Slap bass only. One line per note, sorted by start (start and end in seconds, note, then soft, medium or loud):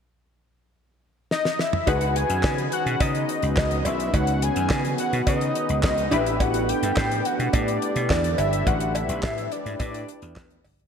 1.87 2.23 C#2 loud
2.30 2.42 F#2 medium
2.44 2.68 C#3 loud
2.86 2.98 B2 medium
3.01 3.24 C#3 loud
3.43 3.55 C#2 medium
3.57 3.81 C#2 loud
3.85 4.09 B1 medium
4.14 4.49 C#2 loud
4.56 4.68 F#2 medium
4.70 4.94 C#3 medium
5.13 5.25 B2 medium
5.27 5.51 C#3 loud
5.70 5.81 C#2 medium
5.84 6.07 C#2 medium
6.12 6.71 A1 loud
6.83 6.94 G2 loud
6.97 7.21 A2 loud
7.39 7.51 B2 medium
7.54 7.77 A2 loud
7.96 8.08 B2 medium
8.10 8.34 E2 loud
8.38 8.62 G1 medium
8.67 9.02 A1 medium
9.09 9.21 B1 medium
9.23 9.47 A2 loud
9.66 9.78 G#2 medium
9.80 10.04 A2 loud
10.22 10.34 E2 medium
10.65 10.87 G1 medium